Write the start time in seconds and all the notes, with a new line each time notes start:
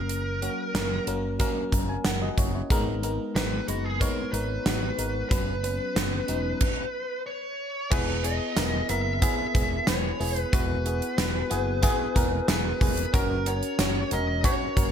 Already playing: F#1 F#3 A#3 C#4 A#4
0.09 closed hi-hat
0.42 F#3 A#3 C#4 F#4, closed hi-hat
0.74 F#1 F#3 A#3 C#4 A#4, snare, closed hi-hat
1.07 F#1 F#3 A#3 C#4 A#4, closed hi-hat
1.39 F#3 A#3 C#4 A#4, kick, closed hi-hat
1.72 F#1, kick, closed hi-hat
1.89 G#5
2.05 F#1 A#4 F#5, snare, closed hi-hat
2.22 F#4 D#5
2.38 F#1 E4 C#5, kick, closed hi-hat
2.55 E4 C#5
2.70 G#1 G#3 B3 D#4 A#4, kick, closed hi-hat
3.03 G#3 B3 D#4 A#4, closed hi-hat
3.35 G#1 G#3 B3 D#4 A#4 B4, snare, closed hi-hat
3.67 F#1 G#3 B3 D#4 F#4 B4, closed hi-hat
3.84 G#4
4.00 G#3 B3 D#4 A#4 C#5, kick, closed hi-hat
4.32 G#1 G#3 B3 D#4 A#4 B4, closed hi-hat
4.65 G#1 G#3 B3 D#4 F#4, snare, closed hi-hat
4.98 G#1 G#3 B3 D#4 A#4, closed hi-hat
5.29 F#1 F#3 B3 C#4 B4, kick, closed hi-hat
5.63 F#3 B3 C#4 B4, closed hi-hat
5.95 F#1 F#3 B3 C#4 B4, snare, closed hi-hat
6.27 E1 F#3 B3 C#4 D#4, closed hi-hat
6.61 kick, crash
7.26 C#5
7.90 E1 B3 E4 G#4 B4, kick, crash
8.23 B3 E4 G#4 D#5, closed hi-hat
8.56 E1 B3 E4 A#4, snare, closed hi-hat, tambourine
8.89 F#1 B3 E4 A#4 E5, closed hi-hat
9.22 B3 E4 G#4 E5, kick, closed hi-hat
9.54 E1 B3 E4 G#4, kick, closed hi-hat
9.87 E1 B3 E4 B4 C#5, snare, closed hi-hat, tambourine
10.19 E1 B3 E4 G#4, open hi-hat
10.36 B4, closed hi-hat
10.52 E1 B3 E4 F#4 B4, kick, closed hi-hat
10.85 B3 E4 G#4, closed hi-hat
11.02 closed hi-hat
11.17 E1 B3 E4 B4, snare, closed hi-hat, tambourine
11.50 F#1 B3 E4 G#4, closed hi-hat
11.82 B3 E4 G#4, kick, closed hi-hat
12.15 E1 B3 E4 A#4, kick, closed hi-hat
12.47 E1 B3 E4 G#4 B4, snare, closed hi-hat, tambourine
12.81 E1 B3 E4 G#4, kick, open hi-hat
12.97 closed hi-hat
13.13 F#1 C#4 F#4 A#4, kick, closed hi-hat
13.46 C#4 F#4 A#4 C#5, closed hi-hat
13.63 closed hi-hat
13.79 F#1 C#4 F#4 C#5, snare, closed hi-hat, tambourine
14.11 E1 C#4 F#4 A#4 D#5, closed hi-hat
14.44 C#4 F#4 C#5, kick, closed hi-hat
14.76 F#1 C#4 F#4 A#4, kick, closed hi-hat